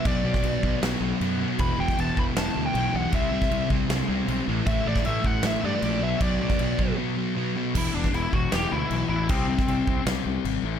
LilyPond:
<<
  \new Staff \with { instrumentName = "Lead electric guitar" } { \time 4/4 \key e \minor \tempo 4 = 156 d''2 r2 | b''8 g''8 a''8 b''8 a''8. g''8. fis''8 | e''4. r2 r8 | e''8 d''8 e''8 fis''8 e''8 d''4 e''8 |
d''2 r2 | e'8 d'8 e'8 fis'8 g'8 e'4 e'8 | c'2 r2 | }
  \new Staff \with { instrumentName = "Distorted electric guitar" } { \clef bass \time 4/4 \key e \minor <b, fis b>8 <b, fis b>8 <b, fis b>8 <b, fis b>8 <b, fis b>8 <b, fis b>8 <b, fis b>8 <b, fis b>8 | <e, b, e>8 <e, b, e>8 <e, b, e>8 <e, b, e>8 <e, b, e>8 <e, b, e>8 <e, b, e>8 <e, b, e>8 | <c g c'>8 <c g c'>8 <c g c'>8 <c g c'>8 <c g c'>8 <c g c'>8 <c g c'>8 <a, e a>8 | <a, e a>8 <a, e a>8 <a, e a>8 <a, e a>8 <a, e a>8 <a, e a>8 <a, e a>8 <b, fis b>8 |
<b, fis b>8 <b, fis b>8 <b, fis b>8 <b, fis b>8 <b, fis b>8 <b, fis b>8 <b, fis b>8 <b, fis b>8 | <e, b, e>8 <e, b, e>8 <e, b, e>8 <e, b, e>8 <e, b, e>8 <e, b, e>8 <e, b, e>8 <e, b, e>8 | <c g c'>8 <c g c'>8 <c g c'>8 <c g c'>8 <c g c'>8 <c g c'>8 <c g c'>8 <a, e a>8 | }
  \new Staff \with { instrumentName = "Distorted electric guitar" } { \clef bass \time 4/4 \key e \minor <b, fis b>8 <b, fis b>8 <b, fis b>8 <b, fis b>8 <b, fis b>8 <b, fis b>8 <b, fis b>8 <b, fis b>8 | <e, b, e>8 <e, b, e>8 <e, b, e>8 <e, b, e>8 <e, b, e>8 <e, b, e>8 <e, b, e>8 <e, b, e>8 | <c g c'>8 <c g c'>8 <c g c'>8 <c g c'>8 <c g c'>8 <c g c'>8 <c g c'>8 <a, e a>8 | <a, e a>8 <a, e a>8 <a, e a>8 <a, e a>8 <a, e a>8 <a, e a>8 <a, e a>8 <b, fis b>8 |
<b, fis b>8 <b, fis b>8 <b, fis b>8 <b, fis b>8 <b, fis b>8 <b, fis b>8 <b, fis b>8 <b, fis b>8 | r1 | r1 | }
  \new Staff \with { instrumentName = "Fingered electric bass" } { \clef bass \time 4/4 \key e \minor b,,4 b,,8 b,,8 b,,8 b,,8 fis,4 | e,,8 e,,8 e,,8 e,,8 e,,8 d,8 b,,8 b,,8 | c,4 c,8 c,8 c,8 c,8 b,,8 a,,8 | a,,8 a,,8 a,,8 a,,8 a,,8 g,8 ais,,8 b,,8 |
b,,4 b,,8 b,,8 r2 | e,,8 e,,8 e,,8 e,,8 e,,8 d,8 b,,8 a,,8 | c,4 c,8 c,8 c,8 c,8 gis,,8 a,,8 | }
  \new DrumStaff \with { instrumentName = "Drums" } \drummode { \time 4/4 <cymc bd>8. <bd sn>16 cymc8 bd8 <cymc sn>4 cymc4 | <cymc bd>8. <bd sn>16 cymc8 bd8 <cymc sn>4 cymc4 | <cymc bd>8. <bd sn>16 cymc8 bd8 <cymc sn>4 cymc4 | <cymc bd>8. <bd sn>16 cymc8 bd8 <cymc sn>4 cymc4 |
<cymc bd>8. <bd sn>16 cymc8 bd8 r4 r4 | <cymc bd>8. <bd sn>16 cymc8 bd8 <cymc sn>4 cymc4 | <cymc bd>8. <bd sn>16 cymc8 bd8 <cymc sn>4 cymc4 | }
>>